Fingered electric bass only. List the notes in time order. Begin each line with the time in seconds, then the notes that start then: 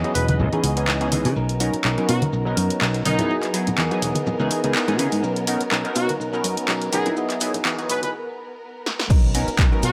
0.15 E1
0.39 C#2
0.53 muted fingered electric bass stroke
0.64 C#2
1.25 C#3
1.36 B1
1.85 B1
2.09 B2
2.33 B1
2.57 F#2
2.81 B1
3.06 B1
3.67 muted fingered electric bass stroke
3.78 E2
4.02 E1
4.40 C#2
4.64 C#2
4.88 G#2
4.99 C#3
5.12 G#2
5.23 B1
5.61 muted fingered electric bass stroke
5.72 B1
5.96 B2
6.20 B1
6.44 F#2
6.57 muted fingered electric bass stroke
6.68 B1
6.93 B1
7.54 muted fingered electric bass stroke
7.65 E2
7.89 E1
9.10 B1
9.48 muted fingered electric bass stroke
9.59 B1
9.83 B2